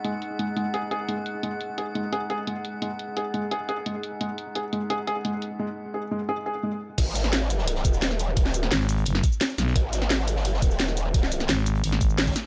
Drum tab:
CC |--------------------------------|--------------------------------|--------------------------------|--------------------------------|
HH |x---x---x---x---x---x---x---x---|x---x---x---x---x---x---x---x---|x---x---x---x---x---x---x---x---|x---x---x---x---x---x---x---x---|
SH |--------------------------------|--------------------------------|--------------------------------|--------------------------------|
SD |--------------------------------|--------------------------------|--------------------------------|--------------------------------|
BD |--------------------------------|--------------------------------|--------------------------------|--------------------------------|

CC |--------------------------------|x-------------------------------|--------------------------------|--------------------------------|
HH |--------------------------------|x---x---x---x---x---x-x-x---x---|x---x---x---x-x-x---x---x---x---|x---x---x---x---x---x-x-x---x---|
SH |--------------------------------|----x-------x-------x-x---x-x---|----x-------x-------x-x---x-x---|----x-------x-------x-x---x-x---|
SD |--------------------------------|----o-o-o-o---o---o-----o-o-----|--o---o-o-o-------o-----o-o-o-o-|----o-o-o-o---o---o-----o-o-----|
BD |--------------------------------|o-------------------o-----------|o-------------------o-----------|o-------------------o-----------|

CC |--------------------------------|
HH |x---x---x---x-x-x---x---xxxxx---|
SH |----x-x-----x-------x-x---x-x---|
SD |--o---o-o-o-------o-----ooooo---|
BD |o-------------------o-----o-----|